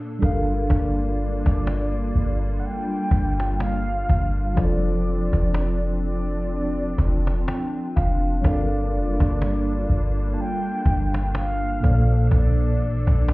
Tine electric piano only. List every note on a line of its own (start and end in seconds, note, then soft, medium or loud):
0.00 0.16 A#2 medium
0.00 0.17 A#3 medium
0.00 0.18 A4 medium
0.00 0.18 C5 medium
0.00 0.19 D5 medium
0.19 4.03 G3 medium
0.19 4.04 D4 medium
0.19 4.05 A4 medium
0.23 4.05 A#4 medium
0.23 4.06 F5 medium
4.54 8.39 F3 medium
4.54 8.39 F4 medium
4.54 8.40 A4 medium
4.59 8.41 C5 medium
4.59 8.42 D5 medium
7.48 7.93 G5 medium
7.96 8.41 F5 medium
8.42 11.78 G3 medium
8.42 11.78 D4 medium
8.42 11.79 A4 medium
8.46 11.80 A#4 medium
8.46 11.81 F5 medium
11.80 13.34 A#2 medium
11.80 13.34 A#3 medium
11.80 13.34 A4 medium
11.85 13.34 C5 medium
11.85 13.34 D5 medium